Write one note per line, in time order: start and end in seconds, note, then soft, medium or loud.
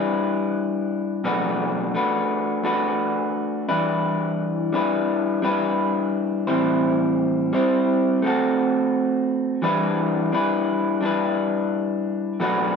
0.00 1.24 G3 medium
0.00 1.25 D4 medium
0.00 1.25 E4 medium
0.00 1.25 B4 medium
1.24 1.94 B2 medium
1.24 1.95 F#3 medium
1.24 1.93 A3 medium
1.24 1.95 D4 medium
1.24 1.94 F#4 medium
1.24 1.96 B4 loud
1.94 2.62 A3 medium
1.94 2.64 D4 medium
1.94 2.64 F#4 medium
1.94 2.65 B4 medium
2.63 3.69 A3 medium
2.63 3.69 D4 medium
2.63 3.68 F#4 medium
2.63 3.68 B4 medium
3.69 4.76 E3 medium
3.69 4.72 G3 medium
3.69 4.72 D4 medium
3.69 4.74 E4 medium
3.69 4.74 B4 medium
4.72 5.42 G3 medium
4.72 5.42 D4 medium
4.72 5.44 E4 medium
4.72 5.44 B4 medium
5.42 6.47 G3 medium
5.42 6.48 D4 medium
5.42 6.46 E4 medium
5.42 6.47 B4 medium
6.47 7.53 A2 medium
6.47 7.53 E3 medium
6.47 7.51 G3 medium
6.47 7.53 C4 medium
6.47 7.53 E4 medium
6.47 7.54 C5 medium
7.53 8.22 G3 medium
7.53 8.23 C4 medium
7.53 8.24 E4 medium
7.53 8.24 C5 medium
8.22 9.62 A3 medium
8.22 9.63 C4 medium
8.22 9.63 F#4 medium
8.27 9.63 A4 medium
9.62 10.32 E3 medium
9.62 10.31 G3 medium
9.62 10.33 D4 loud
9.62 10.33 E4 medium
9.62 10.34 B4 loud
10.32 10.99 G3 medium
10.32 11.02 D4 medium
10.32 11.02 E4 medium
10.32 11.05 B4 medium
11.01 12.40 G3 medium
11.01 12.40 D4 medium
11.01 12.41 E4 medium
11.05 12.41 B4 medium
12.40 12.76 B2 medium
12.40 12.76 F#3 medium
12.40 12.76 A3 loud
12.40 12.76 D4 medium
12.40 12.76 F#4 medium
12.40 12.76 B4 medium